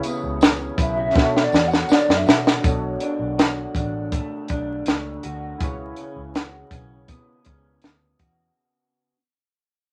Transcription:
0.00 1.15 C#3 medium
0.00 1.11 E4 medium
0.00 0.77 F#4 medium
0.00 1.12 G#4 medium
0.00 1.13 B4 medium
0.00 1.14 C#5 medium
0.00 closed hi-hat medium
0.04 3.55 B3 medium
0.04 tambourine medium
0.23 0.68 C#2 loud
0.41 1.23 C#4 medium
0.41 snare loud
0.41 closed hi-hat loud
0.41 tambourine medium
0.78 1.08 B1 medium
0.78 0.97 E4 medium
0.78 1.45 E5 loud
0.78 kick medium
0.78 closed hi-hat medium
0.78 tambourine soft
0.97 1.23 F#4 medium
1.13 2.63 B2 medium
1.13 1.45 B2 loud
1.13 1.21 C#4 medium
1.13 2.60 F#4 medium
1.13 2.61 A4 medium
1.13 kick loud
1.13 tambourine medium
1.17 2.60 D4 medium
1.17 2.62 C#5 medium
1.17 snare medium
1.37 snare medium
1.44 1.69 D5 medium
1.52 1.82 E2 loud
1.52 2.26 F#4 medium
1.52 snare medium
1.52 tambourine soft
1.68 1.95 F#5 loud
1.68 tambourine soft
1.74 snare medium
1.89 3.01 D4 medium
1.89 muted fingered electric bass stroke medium
1.89 snare medium
1.89 tambourine medium
1.93 2.18 D5 medium
2.09 2.23 F#2 medium
2.09 snare medium
2.17 2.53 E5 medium
2.26 2.56 B2 medium
2.26 3.38 F#4 medium
2.26 snare loud
2.26 tambourine soft
2.47 snare medium
2.61 2.94 B1 loud
2.61 5.60 B2 medium
2.61 5.55 D4 medium
2.61 5.56 F#4 soft
2.61 5.57 A4 medium
2.61 kick loud
2.61 closed hi-hat medium
2.66 5.58 C#5 medium
3.00 3.75 D4 medium
3.00 closed hi-hat medium
3.19 3.64 B1 medium
3.38 5.23 F#4 medium
3.38 snare loud
3.38 closed hi-hat loud
3.75 4.19 A1 medium
3.75 4.48 D4 medium
3.75 kick medium
3.75 closed hi-hat medium
4.12 4.86 A3 medium
4.12 kick medium
4.12 closed hi-hat medium
4.48 4.79 B1 medium
4.48 5.68 D4 medium
4.48 kick medium
4.48 closed hi-hat medium
4.86 5.16 C#2 medium
4.86 5.68 A3 medium
4.86 snare loud
4.86 closed hi-hat medium
5.23 5.53 D2 medium
5.23 6.35 F#4 medium
5.23 closed hi-hat medium
5.58 5.90 C#2 medium
5.58 9.11 C#3 medium
5.58 8.52 E4 medium
5.58 8.53 G#4 medium
5.58 8.54 B4 medium
5.58 kick loud
5.58 closed hi-hat medium
5.63 8.54 C#5 medium
5.96 6.72 C#4 medium
5.96 closed hi-hat medium
6.16 6.61 C#2 medium
6.35 8.19 F#4 medium
6.35 snare loud
6.35 closed hi-hat medium
6.71 7.16 B1 medium
6.71 7.45 C#4 medium
6.71 kick medium
6.71 closed hi-hat medium
7.08 7.82 B3 medium
7.08 kick medium
7.08 closed hi-hat medium
7.45 7.76 C#2 medium
7.45 9.14 C#4 medium
7.45 kick medium
7.45 closed hi-hat medium
7.82 8.13 D2 medium
7.82 9.14 B3 medium
7.82 snare medium
7.82 closed hi-hat medium
8.19 8.49 E2 medium
8.19 9.14 F#4 medium
8.19 kick medium
8.19 closed hi-hat medium

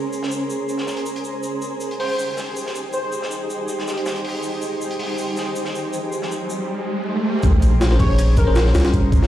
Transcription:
0.00 1.40 C#4 medium
0.00 7.39 G#4 medium
0.00 1.39 A#4 medium
0.00 7.39 C5 medium
0.13 shaker medium
0.23 snare medium
0.31 shaker medium
0.50 shaker medium
0.69 shaker medium
0.78 snare soft
0.87 snare soft
0.87 shaker medium
0.97 closed hi-hat soft
1.06 shaker medium
1.16 closed hi-hat soft
1.24 shaker medium
1.43 7.39 D#4 medium
1.43 7.39 G4 medium
1.43 shaker medium
1.62 shaker medium
1.81 shaker medium
1.91 closed hi-hat soft
1.99 2.06 C5 medium
1.99 open hi-hat medium
2.09 2.15 C5 medium
2.19 shaker medium
2.37 snare soft
2.37 shaker medium
2.56 shaker medium
2.66 snare soft
2.75 shaker medium
2.93 3.00 C5 medium
2.93 shaker medium
3.03 3.09 C5 medium
3.12 shaker medium
3.22 snare soft
3.31 shaker medium
3.50 shaker medium
3.68 shaker medium
3.79 snare soft
3.87 snare soft
3.87 shaker medium
3.97 closed hi-hat soft
4.06 snare loud
4.06 shaker medium
4.16 closed hi-hat soft
4.25 open hi-hat medium
4.43 riser medium
4.43 shaker medium
4.62 shaker medium
4.81 shaker medium
4.91 closed hi-hat soft
4.99 open hi-hat medium
5.18 shaker medium
5.37 snare soft
5.37 shaker medium
5.56 shaker medium
5.65 snare soft
5.75 shaker medium
5.93 shaker medium
6.12 shaker medium
6.22 snare medium
6.31 shaker medium
6.50 shaker medium
7.43 8.73 A#1 loud
7.43 9.27 G#3 medium
7.43 9.27 C#4 medium
7.43 9.27 A#4 medium
7.43 9.27 C5 medium
7.43 kick loud
7.43 closed hi-hat medium
7.43 sub drop medium
7.43 shaker medium
7.62 closed hi-hat medium
7.62 shaker medium
7.81 snare loud
7.81 closed hi-hat medium
7.81 shaker loud
7.91 8.45 C#4 medium
7.91 8.45 G#4 medium
7.91 8.45 A#4 medium
7.91 8.45 C5 loud
7.91 snare soft
7.91 closed hi-hat soft
7.99 8.06 C#5 medium
7.99 kick loud
7.99 closed hi-hat medium
7.99 open hi-hat medium
8.10 8.15 C#5 medium
8.19 closed hi-hat medium
8.19 shaker medium
8.37 8.60 A#4 loud
8.37 kick loud
8.37 snare soft
8.37 closed hi-hat medium
8.37 shaker medium
8.47 9.27 C#4 medium
8.47 9.27 G#4 medium
8.47 9.27 A#4 medium
8.47 9.27 C5 loud
8.56 snare loud
8.56 closed hi-hat medium
8.56 shaker medium
8.66 snare soft
8.75 9.11 C2 loud
8.75 snare medium
8.75 closed hi-hat medium
8.75 shaker medium
8.80 snare medium
8.80 closed hi-hat medium
8.85 snare loud
8.85 closed hi-hat medium
8.93 kick loud
8.93 closed hi-hat medium
8.93 shaker medium
9.12 9.27 G#1 medium
9.12 kick loud
9.12 closed hi-hat medium
9.12 shaker medium
9.22 snare medium
9.22 snare soft

